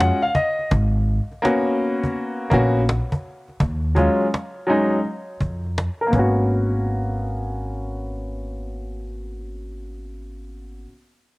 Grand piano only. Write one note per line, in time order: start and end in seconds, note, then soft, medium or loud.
0.00 0.18 G#3 medium
0.00 0.18 C#4 medium
0.00 0.19 F4 medium
0.00 0.17 F#4 medium
0.00 0.21 F#5 medium
0.23 0.34 F5 medium
0.35 0.69 D#5 medium
1.42 2.46 A#3 medium
1.42 2.47 B3 medium
1.42 2.47 C#4 medium
1.42 2.48 F#4 medium
2.50 2.80 A#3 medium
2.50 2.80 B3 medium
2.50 2.81 C#4 medium
2.50 2.81 F#4 medium
3.95 4.24 F#3 medium
3.95 4.25 G#3 medium
3.95 4.25 C#4 medium
3.95 4.26 F4 medium
4.67 4.96 F#3 medium
4.67 4.97 G#3 medium
4.67 4.97 C#4 medium
4.67 4.98 D#4 medium
6.01 6.13 A#4 medium
6.07 10.81 A#3 medium
6.07 10.83 B3 medium
6.15 10.85 C#4 medium
6.15 10.87 F#4 medium